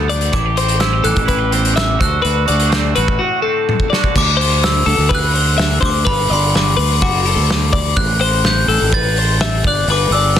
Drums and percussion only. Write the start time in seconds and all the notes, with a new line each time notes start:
0.10 closed hi-hat
0.21 closed hi-hat
0.33 kick, closed hi-hat
0.57 closed hi-hat
0.68 closed hi-hat
0.80 snare, closed hi-hat
1.04 closed hi-hat
1.16 kick, closed hi-hat
1.28 kick, closed hi-hat
1.52 closed hi-hat
1.65 closed hi-hat
1.77 snare, closed hi-hat
2.01 kick, closed hi-hat
2.25 closed hi-hat
2.48 closed hi-hat
2.60 closed hi-hat
2.72 snare, closed hi-hat
2.96 closed hi-hat
3.08 kick
3.69 high tom
3.80 kick
3.93 snare
4.04 kick
4.16 kick, crash
4.41 open hi-hat
4.63 snare, open hi-hat
4.88 open hi-hat
5.11 kick, open hi-hat
5.35 open hi-hat
5.59 snare, open hi-hat
5.82 kick, open hi-hat
6.07 kick, open hi-hat
6.31 open hi-hat
6.55 snare, open hi-hat
6.79 open hi-hat
7.02 kick, open hi-hat
7.25 open hi-hat
7.50 snare, open hi-hat
7.73 kick, open hi-hat
7.96 kick, open hi-hat
8.21 open hi-hat
8.44 snare, open hi-hat
8.69 open hi-hat
8.93 kick, open hi-hat
9.16 open hi-hat
9.40 snare, open hi-hat
9.64 kick, open hi-hat
9.88 open hi-hat
10.12 open hi-hat
10.36 snare, open hi-hat